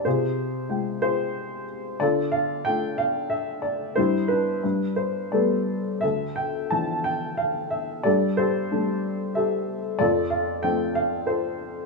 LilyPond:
<<
  \new Staff \with { instrumentName = "Upright piano" } { \time 3/4 \key d \dorian \tempo 4 = 92 << { c''4. c''4 r8 | d''8 f''8 g''8 f''8 e''8 d''8 | c''8 b'4 c''8 d''8. r16 | e''8 g''8 a''8 g''8 f''8 e''8 |
d''8 c''4. e''8. r16 | d''8 f''8 g''8 f''8 c''4 | } \\ { <f' aes'>4. <f' aes'>4. | <f' a'>4. r4. | <e' g'>8 d'4. <a' b'>4 | a'4. r4. |
<g' a'>8 <g' a'>4. <g' a'>4 | <f' a'>4. r8 <f' a'>4 | } >> }
  \new Staff \with { instrumentName = "Upright piano" } { \clef bass \time 3/4 \key d \dorian c4 <aes f' g''>2 | d4 <a d' f'>2 | g,4 g,4 <g a b>4 | d,4 <e f d'>2 |
g,4 <g a d'>2 | f,4 <f a c'>2 | }
>>